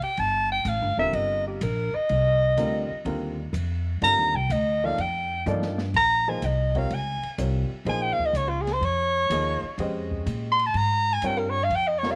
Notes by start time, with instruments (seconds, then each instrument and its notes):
0.02 soprano saxophone G5, ride
0.17 upright bass G1, soprano saxophone A5, ride
0.52 soprano saxophone G5
0.65 upright bass A1, soprano saxophone F5, hi-hat pedal, ride
0.81 upright bass G1
0.97 upright bass D#1, grand piano D3 G3 C4 F4 A#4, soprano saxophone E5
1.13 upright bass G1, soprano saxophone D#5, ride
1.47 soprano saxophone G4
1.61 upright bass A#1, soprano saxophone A#4, hi-hat pedal, ride
1.95 soprano saxophone D#5, muted upright bass stroke
2.09 upright bass C2, ride
2.57 upright bass D2, grand piano D3 G3 C4 F4 A#4, hi-hat pedal, ride
2.90 muted upright bass stroke
3.05 upright bass D#2, grand piano D3 G3 C4 F4 A#4, ride
3.53 upright bass F2, hi-hat pedal, ride
4.02 upright bass G2, grand piano D3 G3 C4 F4 A#4, soprano saxophone A#5, ride
4.17 upright bass D#2
4.34 upright bass C2, soprano saxophone G5
4.50 upright bass D2, soprano saxophone D#5, hi-hat pedal, ride
4.84 grand piano F3 A#3 D#4 A4 D5, soprano saxophone F5
4.98 upright bass F2, soprano saxophone G5, ride
5.46 upright bass G2, grand piano F3 A#3 D#4 A4 D5, hi-hat pedal, high tom
5.62 snare
5.78 snare
5.94 upright bass A#1, soprano saxophone A#5, kick, crash
6.28 grand piano F3 A#3 D#4 G#4 C5, soprano saxophone G#5
6.42 upright bass C2, soprano saxophone D#5, hi-hat pedal, ride
6.75 grand piano G3 C4 F4 A#4 C#5, soprano saxophone F5, kick, ride
6.90 upright bass C#2, soprano saxophone G#5, ride
7.23 muted upright bass stroke, ride
7.38 upright bass C2, grand piano G3 C4 F4 A#4 C#5, hi-hat pedal, ride
7.85 upright bass A#1, grand piano F3 A#3 D#4 G#4 C5, ride
7.89 soprano saxophone G#5
8.02 soprano saxophone G5
8.13 soprano saxophone F5
8.19 muted upright bass stroke, kick
8.26 soprano saxophone D#5
8.33 upright bass C#2, soprano saxophone C#5, hi-hat pedal, ride
8.49 soprano saxophone F4
8.62 soprano saxophone G#4
8.67 snare, ride
8.73 soprano saxophone C5
8.81 upright bass F2, ride
8.85 soprano saxophone C#5
9.30 upright bass D#2, grand piano F3 A#3 D#4 G#4 D#5, hi-hat pedal, ride
9.63 muted upright bass stroke
9.78 upright bass F2, grand piano G#3 C#4 G4 C5 D#5, ride
10.11 kick
10.26 upright bass A#2, hi-hat pedal, ride
10.52 soprano saxophone C6
10.59 ride
10.66 soprano saxophone A5
10.74 upright bass G#2, soprano saxophone A#5, ride
11.13 soprano saxophone G#5
11.22 upright bass G2, grand piano G3 C4 F4 A#4 C#5, hi-hat pedal, ride
11.26 soprano saxophone G5
11.38 soprano saxophone A#4
11.50 soprano saxophone C#5
11.64 soprano saxophone F5
11.70 upright bass F2, ride
11.76 soprano saxophone G5
11.87 soprano saxophone D#5
11.98 soprano saxophone C#5
12.03 grand piano C3 G3 F4 A#4 C#5, snare
12.11 soprano saxophone F5